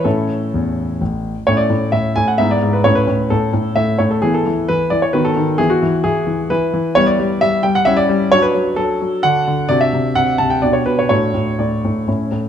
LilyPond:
<<
  \new Staff \with { instrumentName = "Grand piano" } { \time 3/4 \key a \major \tempo 4 = 131 << { <e' a'>2 r4 | cis''16 d''8. e''8 gis''16 fis''16 e''16 d''8 b'16 | cis''16 b'8. a'4 e''8 cis''16 a'16 | gis'16 a'8. b'8 d''16 cis''16 b'16 a'8. |
gis'16 fis'8. gis'4 b'4 | \key d \major cis''16 d''8. e''8 g''16 fis''16 e''16 d''8. | cis''16 b'8. a'4 fis''4 | d''16 e''8. fis''8 a''16 g''16 d''16 cis''16 b'16 cis''16 |
cis''4 d''4 r4 | } \\ { r2. | <cis' e'>2 <b e'>4 | <cis' e'>2. | <b e'>2 <b fis'>4 |
<b e'>2. | <b e'>2 <cis' e'>4 | <d' fis'>2 <d' fis'>4 | <d' fis'>2 <d' g'>4 |
<d' fis'>2 <cis' e'>4 | } >> }
  \new Staff \with { instrumentName = "Grand piano" } { \clef bass \time 3/4 \key a \major <a, cis'>4 e,4 a,,4 | a,8 a,8 a,8 a,8 gis,8 gis,8 | a,8 a,8 a,8 a,8 a,8 a,8 | e8 e8 e8 e8 dis8 dis8 |
e8 e8 e8 e8 e8 e8 | \key d \major g8 g8 g8 g8 g8 g8 | fis8 fis8 fis8 fis8 d8 d8 | c8 c8 c8 c8 b,8 b,8 |
a,8 a,8 a,8 a,8 a,8 a,8 | }
>>